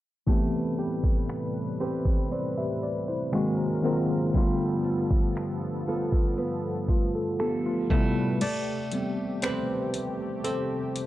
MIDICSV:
0, 0, Header, 1, 5, 480
1, 0, Start_track
1, 0, Key_signature, 0, "minor"
1, 0, Tempo, 1016949
1, 129, Time_signature, 4, 2, 24, 8
1, 5223, End_track
2, 0, Start_track
2, 0, Title_t, "Nylon-string guitar"
2, 0, Program_c, 0, 24
2, 129, Note_on_c, 0, 57, 79
2, 370, Note_on_c, 0, 67, 58
2, 846, Note_off_c, 0, 67, 0
2, 848, Note_on_c, 0, 60, 58
2, 852, Note_on_c, 0, 67, 57
2, 854, Note_on_c, 0, 71, 63
2, 1089, Note_off_c, 0, 60, 0
2, 1091, Note_on_c, 0, 60, 65
2, 1568, Note_off_c, 0, 57, 0
2, 1570, Note_on_c, 0, 56, 76
2, 1618, Note_off_c, 0, 60, 0
2, 1618, Note_off_c, 0, 67, 0
2, 1620, Note_off_c, 0, 71, 0
2, 1811, Note_on_c, 0, 60, 60
2, 1815, Note_on_c, 0, 66, 60
2, 1817, Note_on_c, 0, 70, 68
2, 2049, Note_off_c, 0, 56, 0
2, 2051, Note_on_c, 0, 55, 77
2, 2098, Note_off_c, 0, 60, 0
2, 2100, Note_off_c, 0, 66, 0
2, 2101, Note_off_c, 0, 70, 0
2, 2291, Note_on_c, 0, 65, 61
2, 2768, Note_off_c, 0, 65, 0
2, 2771, Note_on_c, 0, 59, 59
2, 2774, Note_on_c, 0, 65, 60
2, 2777, Note_on_c, 0, 69, 65
2, 3009, Note_off_c, 0, 59, 0
2, 3011, Note_on_c, 0, 59, 66
2, 3489, Note_off_c, 0, 69, 0
2, 3490, Note_on_c, 0, 69, 64
2, 3728, Note_off_c, 0, 55, 0
2, 3730, Note_on_c, 0, 57, 79
2, 3779, Note_off_c, 0, 65, 0
2, 3968, Note_off_c, 0, 57, 0
2, 3970, Note_on_c, 0, 57, 77
2, 3985, Note_off_c, 0, 59, 0
2, 4450, Note_on_c, 0, 60, 61
2, 4454, Note_on_c, 0, 67, 59
2, 4455, Note_off_c, 0, 69, 0
2, 4457, Note_on_c, 0, 71, 64
2, 4927, Note_off_c, 0, 60, 0
2, 4929, Note_on_c, 0, 60, 70
2, 5223, Note_off_c, 0, 57, 0
2, 5223, Note_off_c, 0, 60, 0
2, 5223, Note_off_c, 0, 67, 0
2, 5223, Note_off_c, 0, 71, 0
2, 5223, End_track
3, 0, Start_track
3, 0, Title_t, "Tine electric piano"
3, 0, Program_c, 1, 4
3, 125, Note_on_c, 1, 52, 76
3, 128, Note_on_c, 1, 57, 72
3, 133, Note_on_c, 1, 59, 69
3, 136, Note_on_c, 1, 60, 69
3, 140, Note_on_c, 1, 67, 84
3, 226, Control_c, 1, 64, 127
3, 780, Note_off_c, 1, 52, 0
3, 781, Note_off_c, 1, 57, 0
3, 784, Note_off_c, 1, 59, 0
3, 785, Note_off_c, 1, 60, 0
3, 787, Note_off_c, 1, 67, 0
3, 1094, Note_on_c, 1, 74, 58
3, 1206, Note_off_c, 1, 74, 0
3, 1216, Note_on_c, 1, 76, 67
3, 1218, Note_on_c, 1, 67, 52
3, 1327, Note_off_c, 1, 76, 0
3, 1328, Note_off_c, 1, 67, 0
3, 1336, Note_on_c, 1, 74, 65
3, 1446, Note_off_c, 1, 74, 0
3, 1455, Note_on_c, 1, 72, 59
3, 1458, Note_on_c, 1, 64, 51
3, 1567, Note_on_c, 1, 51, 84
3, 1571, Note_on_c, 1, 56, 73
3, 1575, Note_on_c, 1, 58, 73
3, 1576, Control_c, 1, 64, 0
3, 1579, Note_on_c, 1, 60, 70
3, 1582, Note_on_c, 1, 66, 91
3, 1665, Control_c, 1, 64, 127
3, 1680, Note_off_c, 1, 72, 0
3, 1682, Note_off_c, 1, 64, 0
3, 1760, Note_off_c, 1, 51, 0
3, 1762, Note_off_c, 1, 56, 0
3, 1764, Note_off_c, 1, 58, 0
3, 1766, Note_off_c, 1, 60, 0
3, 1767, Note_off_c, 1, 66, 0
3, 1806, Note_on_c, 1, 51, 84
3, 1810, Note_on_c, 1, 56, 75
3, 1814, Note_on_c, 1, 58, 69
3, 1818, Note_on_c, 1, 60, 72
3, 1821, Note_on_c, 1, 65, 85
3, 1971, Note_off_c, 1, 51, 0
3, 1973, Note_off_c, 1, 56, 0
3, 1975, Note_off_c, 1, 58, 0
3, 1976, Note_off_c, 1, 60, 0
3, 1978, Note_off_c, 1, 65, 0
3, 2048, Note_on_c, 1, 50, 81
3, 2052, Note_on_c, 1, 55, 72
3, 2055, Control_c, 1, 64, 0
3, 2055, Note_on_c, 1, 57, 73
3, 2060, Note_on_c, 1, 59, 73
3, 2063, Note_on_c, 1, 65, 86
3, 2128, Control_c, 1, 64, 127
3, 2701, Note_off_c, 1, 50, 0
3, 2703, Note_off_c, 1, 55, 0
3, 2705, Note_off_c, 1, 57, 0
3, 2707, Note_off_c, 1, 59, 0
3, 2709, Note_off_c, 1, 65, 0
3, 3255, Note_on_c, 1, 65, 56
3, 3258, Note_on_c, 1, 57, 50
3, 3366, Note_off_c, 1, 65, 0
3, 3368, Note_off_c, 1, 57, 0
3, 3375, Note_on_c, 1, 69, 65
3, 3486, Note_off_c, 1, 69, 0
3, 3495, Note_on_c, 1, 67, 67
3, 3498, Note_on_c, 1, 59, 54
3, 3606, Note_off_c, 1, 67, 0
3, 3608, Note_off_c, 1, 59, 0
3, 3616, Note_on_c, 1, 65, 58
3, 3619, Note_on_c, 1, 57, 48
3, 3728, Note_on_c, 1, 48, 88
3, 3730, Note_off_c, 1, 57, 0
3, 3731, Note_on_c, 1, 55, 75
3, 3734, Control_c, 1, 64, 0
3, 3735, Note_on_c, 1, 57, 76
3, 3739, Note_on_c, 1, 59, 81
3, 3743, Note_on_c, 1, 64, 92
3, 3817, Control_c, 1, 64, 127
3, 3840, Note_off_c, 1, 65, 0
3, 3920, Note_off_c, 1, 48, 0
3, 3922, Note_off_c, 1, 55, 0
3, 3924, Note_off_c, 1, 57, 0
3, 3926, Note_off_c, 1, 59, 0
3, 3928, Note_off_c, 1, 64, 0
3, 3972, Note_on_c, 1, 74, 108
3, 3975, Control_c, 1, 64, 0
3, 4071, Control_c, 1, 64, 127
3, 4213, Note_on_c, 1, 55, 53
3, 4215, Note_on_c, 1, 59, 52
3, 4218, Note_on_c, 1, 60, 62
3, 4432, Note_off_c, 1, 74, 0
3, 4450, Note_on_c, 1, 72, 96
3, 4530, Note_off_c, 1, 55, 0
3, 4531, Note_off_c, 1, 59, 0
3, 4533, Note_off_c, 1, 60, 0
3, 4929, Note_on_c, 1, 69, 92
3, 4944, Note_off_c, 1, 72, 0
3, 5223, Note_off_c, 1, 69, 0
3, 5223, End_track
4, 0, Start_track
4, 0, Title_t, "Analog synth pad"
4, 0, Program_c, 2, 89
4, 128, Note_on_c, 2, 45, 71
4, 128, Note_on_c, 2, 48, 66
4, 128, Note_on_c, 2, 55, 65
4, 129, Note_on_c, 2, 71, 77
4, 1554, Note_off_c, 2, 45, 0
4, 1554, Note_off_c, 2, 55, 0
4, 1554, Note_off_c, 2, 71, 0
4, 1569, Note_on_c, 2, 54, 65
4, 1570, Note_on_c, 2, 70, 78
4, 1571, Note_on_c, 2, 44, 72
4, 2029, Note_off_c, 2, 48, 0
4, 2044, Note_off_c, 2, 54, 0
4, 2044, Note_off_c, 2, 70, 0
4, 2045, Note_off_c, 2, 44, 0
4, 2052, Note_on_c, 2, 43, 70
4, 2052, Note_on_c, 2, 69, 78
4, 2053, Note_on_c, 2, 53, 64
4, 2053, Note_on_c, 2, 59, 66
4, 3714, Note_off_c, 2, 43, 0
4, 3714, Note_off_c, 2, 53, 0
4, 3714, Note_off_c, 2, 59, 0
4, 3714, Note_off_c, 2, 69, 0
4, 3732, Note_on_c, 2, 55, 64
4, 3733, Note_on_c, 2, 45, 70
4, 3733, Note_on_c, 2, 48, 64
4, 3733, Note_on_c, 2, 71, 74
4, 3968, Note_off_c, 2, 45, 0
4, 3968, Note_off_c, 2, 48, 0
4, 3968, Note_off_c, 2, 55, 0
4, 3969, Note_off_c, 2, 71, 0
4, 3972, Note_on_c, 2, 57, 69
4, 3972, Note_on_c, 2, 67, 81
4, 3974, Note_on_c, 2, 48, 66
4, 5223, Note_off_c, 2, 48, 0
4, 5223, Note_off_c, 2, 57, 0
4, 5223, Note_off_c, 2, 67, 0
4, 5223, End_track
5, 0, Start_track
5, 0, Title_t, "Drums"
5, 129, Note_on_c, 9, 36, 97
5, 176, Note_off_c, 9, 36, 0
5, 489, Note_on_c, 9, 36, 84
5, 536, Note_off_c, 9, 36, 0
5, 611, Note_on_c, 9, 26, 95
5, 659, Note_off_c, 9, 26, 0
5, 969, Note_on_c, 9, 36, 82
5, 1017, Note_off_c, 9, 36, 0
5, 1572, Note_on_c, 9, 26, 99
5, 1619, Note_off_c, 9, 26, 0
5, 2049, Note_on_c, 9, 42, 65
5, 2050, Note_on_c, 9, 36, 97
5, 2096, Note_off_c, 9, 42, 0
5, 2097, Note_off_c, 9, 36, 0
5, 2287, Note_on_c, 9, 42, 58
5, 2335, Note_off_c, 9, 42, 0
5, 2410, Note_on_c, 9, 36, 91
5, 2457, Note_off_c, 9, 36, 0
5, 2528, Note_on_c, 9, 42, 72
5, 2534, Note_on_c, 9, 26, 105
5, 2575, Note_off_c, 9, 42, 0
5, 2581, Note_off_c, 9, 26, 0
5, 2890, Note_on_c, 9, 36, 84
5, 2938, Note_off_c, 9, 36, 0
5, 3009, Note_on_c, 9, 42, 71
5, 3057, Note_off_c, 9, 42, 0
5, 3250, Note_on_c, 9, 36, 79
5, 3252, Note_on_c, 9, 42, 66
5, 3297, Note_off_c, 9, 36, 0
5, 3300, Note_off_c, 9, 42, 0
5, 3489, Note_on_c, 9, 42, 66
5, 3492, Note_on_c, 9, 26, 105
5, 3537, Note_off_c, 9, 42, 0
5, 3539, Note_off_c, 9, 26, 0
5, 3730, Note_on_c, 9, 36, 102
5, 3732, Note_on_c, 9, 42, 58
5, 3777, Note_off_c, 9, 36, 0
5, 3780, Note_off_c, 9, 42, 0
5, 3970, Note_on_c, 9, 42, 62
5, 3970, Note_on_c, 9, 49, 88
5, 4017, Note_off_c, 9, 42, 0
5, 4017, Note_off_c, 9, 49, 0
5, 4208, Note_on_c, 9, 42, 60
5, 4255, Note_off_c, 9, 42, 0
5, 4447, Note_on_c, 9, 42, 72
5, 4454, Note_on_c, 9, 26, 102
5, 4495, Note_off_c, 9, 42, 0
5, 4501, Note_off_c, 9, 26, 0
5, 4691, Note_on_c, 9, 42, 70
5, 4738, Note_off_c, 9, 42, 0
5, 4930, Note_on_c, 9, 42, 71
5, 4977, Note_off_c, 9, 42, 0
5, 5171, Note_on_c, 9, 42, 64
5, 5219, Note_off_c, 9, 42, 0
5, 5223, End_track
0, 0, End_of_file